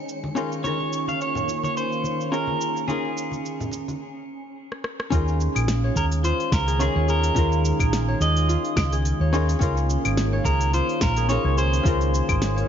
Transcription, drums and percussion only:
0.09 cabasa
0.24 high conga
0.37 muted conga, cabasa
0.52 cabasa
0.64 high conga, cabasa
0.80 muted conga
0.93 cabasa
1.08 high conga, cabasa
1.21 cabasa
1.35 low conga, cabasa
1.48 muted conga, cabasa
1.63 high conga, cabasa
1.77 cabasa
1.92 cabasa
2.04 muted conga, high conga, cabasa
2.21 cabasa
2.33 cabasa
2.47 high conga
2.61 cabasa
2.77 cabasa
2.88 high conga, cabasa
3.18 cabasa
3.31 high conga, cabasa
3.46 cabasa
3.61 low conga, cabasa
3.71 muted conga, cabasa
3.88 high conga, cabasa
4.72 cross-stick
4.84 cross-stick
5.00 cross-stick
5.12 kick, open hi-hat, cabasa
5.28 cabasa
5.41 cabasa
5.56 open hi-hat, cabasa, claves
5.68 snare, open hi-hat, cabasa
5.96 kick, cabasa
6.12 open hi-hat, cabasa
6.24 open hi-hat, cabasa
6.40 open hi-hat
6.52 kick, snare, cabasa
6.68 open hi-hat, cabasa
6.80 open hi-hat, cabasa
7.09 cabasa
7.23 open hi-hat, cabasa
7.36 kick, open hi-hat, cabasa
7.52 cabasa
7.65 cabasa
7.80 kick, open hi-hat, cabasa, claves
7.93 snare, open hi-hat, cabasa
8.21 cabasa
8.36 open hi-hat, cabasa
8.49 open hi-hat, cabasa
8.64 open hi-hat
8.76 kick, snare, cabasa, claves
8.92 open hi-hat, cabasa
9.05 open hi-hat, cabasa
9.34 cabasa
9.49 open hi-hat, cabasa
9.61 kick, open hi-hat, cabasa
9.77 cabasa
9.90 cabasa
10.05 open hi-hat, cabasa, claves
10.17 snare, open hi-hat, cabasa
10.45 kick, cabasa
10.61 open hi-hat, cabasa
10.73 open hi-hat, cabasa
10.89 open hi-hat
11.01 kick, snare, cabasa
11.16 open hi-hat, cabasa
11.29 open hi-hat, cabasa
11.58 cabasa
11.73 open hi-hat, cabasa
11.85 kick, open hi-hat, cabasa
12.01 open hi-hat, cabasa
12.14 cabasa
12.29 kick, open hi-hat, cabasa, claves
12.42 snare, open hi-hat, cabasa
12.58 open hi-hat

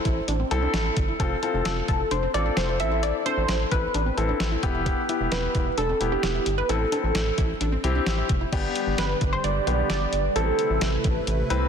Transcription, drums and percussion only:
0.05 kick, closed hi-hat
0.28 closed hi-hat
0.51 closed hi-hat
0.74 snare, closed hi-hat
0.97 kick, closed hi-hat
1.20 kick, closed hi-hat
1.43 closed hi-hat
1.65 snare, closed hi-hat
1.88 kick, closed hi-hat
2.11 closed hi-hat
2.34 closed hi-hat
2.57 snare, closed hi-hat
2.80 closed hi-hat
3.03 closed hi-hat
3.26 closed hi-hat
3.48 snare, closed hi-hat
3.71 kick, closed hi-hat
3.94 closed hi-hat
4.18 closed hi-hat
4.40 snare, closed hi-hat
4.63 kick, closed hi-hat
4.86 kick, closed hi-hat
5.09 closed hi-hat
5.32 snare, closed hi-hat
5.55 kick, closed hi-hat
5.78 closed hi-hat
6.01 closed hi-hat
6.23 snare, closed hi-hat
6.46 closed hi-hat
6.69 closed hi-hat
6.92 closed hi-hat
7.15 snare, closed hi-hat
7.38 kick, closed hi-hat
7.61 closed hi-hat
7.84 closed hi-hat
8.06 snare, closed hi-hat
8.29 kick, closed hi-hat
8.53 kick, closed hi-hat, crash
8.76 closed hi-hat
8.98 snare, closed hi-hat
9.21 kick, closed hi-hat
9.44 closed hi-hat
9.67 closed hi-hat
9.90 snare, closed hi-hat
10.13 closed hi-hat
10.36 closed hi-hat
10.59 closed hi-hat
10.81 snare, closed hi-hat
11.04 kick, closed hi-hat
11.27 closed hi-hat
11.50 closed hi-hat

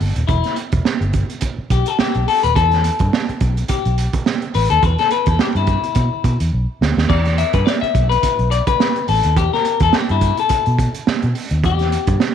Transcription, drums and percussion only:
0.01 open hi-hat
0.16 closed hi-hat
0.28 kick, closed hi-hat
0.44 snare, closed hi-hat
0.56 closed hi-hat
0.72 kick, closed hi-hat
0.85 snare
1.02 closed hi-hat
1.13 kick, closed hi-hat
1.30 closed hi-hat
1.41 kick, closed hi-hat
1.70 kick, closed hi-hat
1.86 closed hi-hat
1.99 snare
2.14 closed hi-hat
2.28 open hi-hat
2.43 closed hi-hat
2.56 kick, closed hi-hat
2.71 snare, closed hi-hat
2.84 closed hi-hat
2.99 kick, closed hi-hat
3.13 snare
3.29 closed hi-hat
3.41 kick, closed hi-hat
3.57 closed hi-hat
3.68 kick, closed hi-hat
3.85 closed hi-hat
3.98 closed hi-hat
4.13 kick, closed hi-hat
4.26 snare
4.42 closed hi-hat
4.54 open hi-hat
4.70 closed hi-hat
4.83 kick, closed hi-hat
4.98 snare, closed hi-hat
5.11 closed hi-hat
5.26 kick, closed hi-hat
5.39 snare
5.56 closed hi-hat
5.67 kick, closed hi-hat
5.84 closed hi-hat
5.95 kick, closed hi-hat
6.24 kick, closed hi-hat
6.40 closed hi-hat
6.82 snare
6.98 snare
7.10 kick, crash
7.25 snare, closed hi-hat
7.38 closed hi-hat
7.53 kick, closed hi-hat
7.67 snare
7.83 closed hi-hat
7.95 kick, closed hi-hat
8.12 closed hi-hat
8.23 kick, closed hi-hat
8.39 closed hi-hat
8.52 closed hi-hat
8.67 kick, closed hi-hat
8.80 snare
8.96 closed hi-hat
9.08 open hi-hat
9.23 closed hi-hat
9.36 kick, closed hi-hat
9.54 snare
9.65 closed hi-hat
9.80 kick, closed hi-hat
9.93 snare
10.09 closed hi-hat
10.21 kick, closed hi-hat
10.37 closed hi-hat
10.49 kick, closed hi-hat
10.66 closed hi-hat
10.79 kick, closed hi-hat
10.94 closed hi-hat
11.07 snare
11.22 closed hi-hat
11.35 open hi-hat
11.51 closed hi-hat
11.64 kick, closed hi-hat
11.79 snare, closed hi-hat
11.92 closed hi-hat
12.07 kick, closed hi-hat
12.20 snare

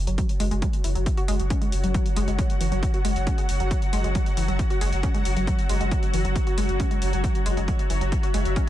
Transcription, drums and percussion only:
0.07 closed hi-hat
0.18 kick, closed hi-hat
0.29 closed hi-hat
0.40 open hi-hat
0.51 closed hi-hat
0.62 kick, closed hi-hat
0.73 closed hi-hat
0.84 open hi-hat
0.95 closed hi-hat
1.06 kick, closed hi-hat
1.17 closed hi-hat
1.28 open hi-hat
1.40 closed hi-hat
1.50 kick, closed hi-hat
1.62 closed hi-hat
1.72 open hi-hat
1.84 closed hi-hat
1.94 kick, closed hi-hat
2.06 closed hi-hat
2.16 open hi-hat
2.28 closed hi-hat
2.39 kick, closed hi-hat
2.50 closed hi-hat
2.61 open hi-hat
2.72 closed hi-hat
2.83 kick, closed hi-hat
2.94 closed hi-hat
3.05 open hi-hat
3.16 closed hi-hat
3.27 kick, closed hi-hat
3.38 closed hi-hat
3.49 open hi-hat
3.60 closed hi-hat
3.71 kick, closed hi-hat
3.82 closed hi-hat
3.93 open hi-hat
4.04 closed hi-hat
4.15 kick, closed hi-hat
4.26 closed hi-hat
4.37 open hi-hat
4.48 closed hi-hat
4.59 kick, closed hi-hat
4.70 closed hi-hat
4.81 open hi-hat
4.92 closed hi-hat
5.03 kick, closed hi-hat
5.14 closed hi-hat
5.25 open hi-hat
5.37 closed hi-hat
5.47 kick, closed hi-hat
5.59 closed hi-hat
5.69 open hi-hat
5.81 closed hi-hat
5.91 kick, closed hi-hat
6.03 closed hi-hat
6.14 open hi-hat
6.25 closed hi-hat
6.36 kick, closed hi-hat
6.47 closed hi-hat
6.58 open hi-hat
6.69 closed hi-hat
6.80 kick, closed hi-hat
6.91 closed hi-hat
7.02 open hi-hat
7.13 closed hi-hat
7.24 kick, closed hi-hat
7.35 closed hi-hat
7.46 open hi-hat
7.57 closed hi-hat
7.68 kick, closed hi-hat
7.79 closed hi-hat
7.90 open hi-hat
8.01 closed hi-hat
8.12 kick, closed hi-hat
8.23 closed hi-hat
8.34 open hi-hat
8.45 closed hi-hat
8.56 kick, closed hi-hat

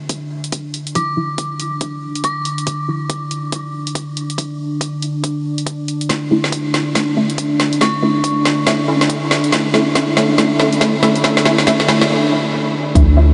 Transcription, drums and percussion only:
0.09 kick, closed hi-hat
0.44 closed hi-hat
0.52 kick, closed hi-hat
0.74 closed hi-hat
0.87 closed hi-hat
0.95 kick, closed hi-hat
1.38 kick, closed hi-hat
1.60 closed hi-hat
1.81 kick, closed hi-hat
2.15 closed hi-hat
2.24 kick, closed hi-hat
2.45 closed hi-hat
2.58 closed hi-hat
2.67 kick, closed hi-hat
3.10 kick, closed hi-hat
3.31 closed hi-hat
3.52 kick, closed hi-hat
3.87 closed hi-hat
3.95 kick, closed hi-hat
4.17 closed hi-hat
4.30 closed hi-hat
4.38 kick, closed hi-hat
4.81 kick, closed hi-hat
5.02 closed hi-hat
5.24 kick, closed hi-hat
5.58 closed hi-hat
5.67 kick, closed hi-hat
5.88 closed hi-hat
6.01 closed hi-hat
6.09 kick, snare, closed hi-hat
6.44 snare
6.52 kick, closed hi-hat
6.74 snare, closed hi-hat
6.95 kick, snare, closed hi-hat
7.30 closed hi-hat
7.38 kick, closed hi-hat
7.60 snare, closed hi-hat
7.73 closed hi-hat
7.81 kick, snare, closed hi-hat
8.24 kick, closed hi-hat
8.45 snare, closed hi-hat
8.67 kick, snare, closed hi-hat
9.01 snare, closed hi-hat
9.09 kick, closed hi-hat
9.31 snare, closed hi-hat
9.44 closed hi-hat
9.52 kick, snare, closed hi-hat
9.74 snare
9.95 kick, snare, closed hi-hat
10.17 snare, closed hi-hat
10.38 kick, snare, closed hi-hat
10.60 snare
10.73 closed hi-hat
10.81 kick, snare, closed hi-hat
11.03 snare, closed hi-hat
11.16 closed hi-hat
11.24 kick, snare, closed hi-hat
11.37 snare
11.45 snare
11.58 snare
11.67 kick, snare, closed hi-hat
11.80 snare
11.88 snare, closed hi-hat
12.01 snare
12.95 kick, closed hi-hat

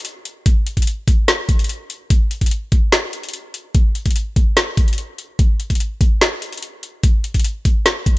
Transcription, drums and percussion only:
0.05 closed hi-hat
0.25 closed hi-hat
0.46 kick, closed hi-hat
0.67 closed hi-hat
0.77 kick, closed hi-hat
0.82 closed hi-hat
0.87 closed hi-hat
1.08 kick, closed hi-hat
1.28 snare, closed hi-hat
1.49 kick, closed hi-hat
1.59 closed hi-hat
1.64 closed hi-hat
1.69 closed hi-hat
1.90 closed hi-hat
2.10 kick, closed hi-hat
2.31 closed hi-hat
2.41 kick, closed hi-hat
2.46 closed hi-hat
2.51 closed hi-hat
2.72 kick, closed hi-hat
2.92 snare, closed hi-hat
3.13 closed hi-hat
3.23 closed hi-hat
3.29 closed hi-hat
3.33 closed hi-hat
3.54 closed hi-hat
3.75 kick, closed hi-hat
3.95 closed hi-hat
4.06 kick, closed hi-hat
4.11 closed hi-hat
4.16 closed hi-hat
4.36 kick, closed hi-hat
4.57 snare, closed hi-hat
4.77 kick, closed hi-hat
4.88 closed hi-hat
4.93 closed hi-hat
4.98 closed hi-hat
5.18 closed hi-hat
5.39 kick, closed hi-hat
5.60 closed hi-hat
5.70 kick, closed hi-hat
5.75 closed hi-hat
5.80 closed hi-hat
6.01 kick, closed hi-hat
6.21 snare, closed hi-hat
6.42 closed hi-hat
6.53 closed hi-hat
6.57 closed hi-hat
6.62 closed hi-hat
6.83 closed hi-hat
7.03 kick, closed hi-hat
7.24 closed hi-hat
7.34 kick, closed hi-hat
7.39 closed hi-hat
7.44 closed hi-hat
7.65 kick, closed hi-hat
7.86 snare, closed hi-hat
8.06 kick, closed hi-hat

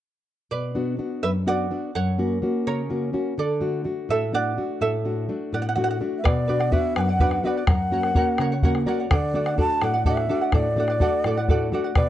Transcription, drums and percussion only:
6.25 bombo rim, bombo low
6.61 bombo rim
6.72 bombo rim, bombo low
6.96 bombo rim
7.08 bombo rim
7.20 bombo low
7.31 bombo rim
7.67 bombo rim, bombo low
8.03 bombo rim
8.15 bombo rim, bombo low
8.38 bombo rim
8.51 bombo rim
8.63 bombo low
8.75 bombo rim
9.11 bombo rim, bombo low
9.46 bombo rim
9.58 bombo rim, bombo low
9.82 bombo rim
10.05 bombo low
10.17 bombo rim
10.52 bombo rim, bombo low
10.88 bombo rim
11.00 bombo rim, bombo low
11.13 bombo rim
11.24 bombo rim
11.48 bombo low
11.72 bombo rim
11.95 bombo rim, bombo low

